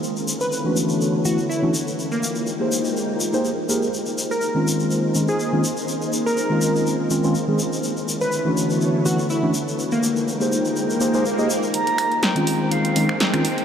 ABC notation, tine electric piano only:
X:1
M:4/4
L:1/16
Q:"Swing 16ths" 1/4=123
K:Bbdor
V:1 name="Tine electric piano"
z4 z [=E,=A,^C=D^F]4- [E,A,CDF] [E,A,CD=E] z2 [E,A,CDF] z2 | z4 z [B,EGAc]4- [B,EGAc] z [B,EGAc] z2 [B,EGAB] z | z4 z [E,A,CDF]4- [E,A,CDF] [E,A,CDE] z2 [E,A,CDF] z2 | z4 z [E,A,CDF]4- [E,A,CDF] [E,A,CDF] [E,A,CDF] z [E,A,CDA] z2 |
z4 z [=E,=A,^C=D^F]4- [E,A,CDF] [E,A,CD=E] z2 [E,A,CDF] z2 | z4 z [B,EGAc]4- [B,EGAc] [B,EGAc] [B,EGAc] z [B,EGAe] z2 | z4 z [E,A,CDF]4- [E,A,CDF] [E,A,CDE] z2 [E,A,CDF] z2 |]